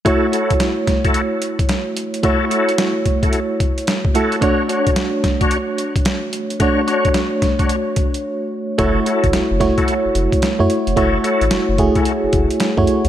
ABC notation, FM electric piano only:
X:1
M:4/4
L:1/16
Q:"Swing 16ths" 1/4=110
K:F#m
V:1 name="FM electric piano"
[A,EFc]16 | [A,EFc]12- [A,EFc]2 [A,EFA]2 | [A,DFc]16 | [A,DFc]16 |
[A,EFc]4 z2 [A,EFc]4- [A,EFc] z2 [A,EFc]2 z | [A,EFc]4 z2 [A,EFG]4- [A,EFG] z2 [A,EFc]2 z |]